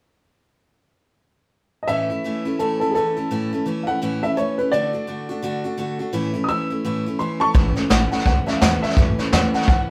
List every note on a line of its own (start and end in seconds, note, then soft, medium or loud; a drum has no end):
1.83 1.86 D#5 medium
1.88 2.09 A2 medium
1.88 2.09 E3 medium
1.88 2.10 A3 medium
1.88 2.10 C#4 medium
1.88 2.09 E4 medium
1.88 2.56 E5 loud
2.10 2.24 A3 soft
2.10 2.24 C#4 soft
2.10 2.24 E4 medium
2.24 2.45 E3 medium
2.24 2.46 A3 medium
2.24 2.45 C#4 medium
2.24 2.44 E4 medium
2.45 2.59 A3 medium
2.45 2.59 C#4 medium
2.45 2.59 E4 medium
2.59 2.80 A2 medium
2.59 2.81 E3 medium
2.59 2.81 A3 medium
2.59 2.81 C#4 medium
2.59 2.80 E4 medium
2.59 2.78 A4 medium
2.80 2.95 A3 soft
2.80 2.95 C#4 medium
2.80 2.95 E4 medium
2.80 2.93 A4 medium
2.91 2.93 G#4 medium
2.95 3.16 E3 medium
2.95 3.16 A3 medium
2.95 3.16 C#4 medium
2.95 3.15 E4 medium
2.95 3.63 A4 loud
3.17 3.30 A3 soft
3.17 3.31 C#4 medium
3.17 3.30 E4 medium
3.31 3.51 A2 medium
3.31 3.52 E3 medium
3.31 3.52 A3 medium
3.31 3.52 C#4 medium
3.31 3.51 E4 medium
3.53 3.65 A3 medium
3.53 3.66 C#4 medium
3.53 3.66 E4 medium
3.66 3.87 E3 medium
3.66 3.87 A3 medium
3.66 3.87 C#4 medium
3.66 3.86 E4 medium
3.83 4.01 E4 medium
3.83 3.85 F5 medium
3.83 4.21 F#5 loud
3.88 4.01 A3 soft
3.88 4.01 C#4 medium
4.02 4.22 A2 medium
4.02 4.23 E3 medium
4.02 4.23 A3 medium
4.02 4.23 C#4 medium
4.02 4.22 E4 medium
4.23 4.37 A3 soft
4.23 4.37 C#4 medium
4.23 4.37 E4 medium
4.23 4.36 E5 medium
4.37 4.58 E3 medium
4.37 4.58 A3 medium
4.37 4.59 C#4 medium
4.37 4.57 E4 medium
4.37 4.57 C#5 medium
4.58 4.72 A3 soft
4.58 4.73 C#4 medium
4.58 4.72 E4 medium
4.58 4.71 B4 medium
4.72 4.93 D3 medium
4.72 4.94 A3 medium
4.72 4.93 D4 medium
4.72 4.92 F#4 medium
4.72 5.75 D5 loud
4.93 5.06 A3 soft
4.93 5.07 D4 soft
4.93 5.07 F#4 medium
5.07 5.28 D3 medium
5.07 5.29 A3 medium
5.07 5.29 D4 medium
5.07 5.28 F#4 medium
5.29 5.42 A3 medium
5.29 5.43 D4 medium
5.29 5.43 F#4 medium
5.42 5.64 D3 medium
5.42 5.64 A3 medium
5.42 5.64 D4 medium
5.42 5.63 F#4 loud
5.64 5.77 A3 soft
5.64 5.77 D4 medium
5.64 5.78 F#4 medium
5.77 5.99 D3 medium
5.77 5.99 A3 medium
5.77 5.99 D4 medium
5.77 5.98 F#4 medium
5.99 6.12 A3 soft
5.99 6.13 D4 medium
5.99 6.13 F#4 medium
6.13 6.34 A2 medium
6.13 6.34 E3 medium
6.13 6.34 A3 loud
6.13 6.34 C#4 medium
6.13 6.32 E4 medium
6.34 6.48 A3 medium
6.34 6.49 C#4 medium
6.34 6.48 E4 medium
6.44 6.47 D#6 medium
6.49 6.70 E3 medium
6.49 6.70 A3 medium
6.49 6.70 C#4 medium
6.49 6.69 E4 medium
6.49 7.17 E6 loud
6.70 6.84 A3 soft
6.70 6.84 C#4 soft
6.70 6.84 E4 medium
6.85 7.06 A2 medium
6.85 7.06 E3 medium
6.85 7.06 A3 medium
6.85 7.06 C#4 medium
6.85 7.05 E4 medium
7.06 7.19 A3 medium
7.06 7.20 C#4 medium
7.06 7.20 E4 medium
7.19 7.41 E3 medium
7.19 7.41 A3 medium
7.19 7.40 C#4 medium
7.19 7.39 E4 medium
7.19 7.40 C6 medium
7.40 7.54 A3 soft
7.40 7.54 C#4 medium
7.40 7.54 E4 medium
7.40 7.53 A5 medium
7.40 7.55 C#6 loud
7.54 7.72 A1 medium
7.54 7.76 A2 medium
7.54 7.76 E3 medium
7.54 7.76 A3 medium
7.54 7.76 C#4 medium
7.54 7.74 E4 medium
7.54 kick loud
7.54 snare soft
7.76 7.89 A3 soft
7.76 7.89 C#4 medium
7.76 7.90 E4 medium
7.76 muted upright bass stroke medium
7.76 snare soft
7.89 8.07 A1 medium
7.89 8.11 A2 medium
7.89 8.12 E3 medium
7.89 8.12 A3 medium
7.89 8.11 C#4 medium
7.89 8.10 E4 medium
7.89 8.10 F#5 loud
7.89 snare loud
7.89 hi-hat pedal medium
8.11 8.25 A3 soft
8.11 8.26 C#4 medium
8.11 8.26 E4 medium
8.11 8.24 F#5 medium
8.11 snare soft
8.19 snare soft
8.26 8.42 C#2 medium
8.26 8.47 E3 medium
8.26 8.47 A3 medium
8.26 8.46 C#4 medium
8.26 8.45 E4 medium
8.26 8.46 F#5 medium
8.26 kick loud
8.26 snare soft
8.46 8.61 A3 soft
8.46 8.61 C#4 medium
8.46 8.61 E4 medium
8.46 8.61 E5 medium
8.46 muted upright bass stroke medium
8.46 snare soft
8.57 8.60 F5 medium
8.61 8.78 E2 medium
8.61 8.83 A2 medium
8.61 8.83 E3 medium
8.61 8.83 A3 medium
8.61 8.83 C#4 medium
8.61 8.82 E4 loud
8.61 8.82 F#5 medium
8.61 snare loud
8.61 hi-hat pedal medium
8.82 8.97 A3 soft
8.82 8.97 C#4 medium
8.82 8.97 E4 medium
8.82 8.96 E5 loud
8.82 muted upright bass stroke medium
8.82 snare soft
8.90 snare soft
8.97 9.14 F#2 medium
8.97 9.18 A2 medium
8.97 9.18 E3 medium
8.97 9.19 A3 medium
8.97 9.19 C#4 medium
8.97 9.17 E4 medium
8.97 kick loud
8.97 snare soft
9.18 9.33 A3 soft
9.18 9.33 C#4 medium
9.18 9.32 E4 medium
9.18 muted upright bass stroke medium
9.18 snare soft
9.32 9.49 E2 medium
9.32 9.54 A2 medium
9.32 9.54 E3 medium
9.32 9.54 A3 medium
9.32 9.54 C#4 medium
9.32 9.53 E4 loud
9.32 9.53 F#5 medium
9.32 snare loud
9.32 hi-hat pedal medium
9.54 9.67 A3 soft
9.54 9.68 C#4 soft
9.54 9.68 E4 medium
9.54 9.67 F#5 medium
9.54 muted upright bass stroke medium
9.54 snare soft
9.61 snare soft
9.68 9.85 C#2 medium
9.68 9.89 E3 medium
9.68 9.89 A3 medium
9.68 9.89 C#4 medium
9.68 9.88 E4 medium
9.68 9.89 F#5 loud
9.68 kick loud
9.68 snare soft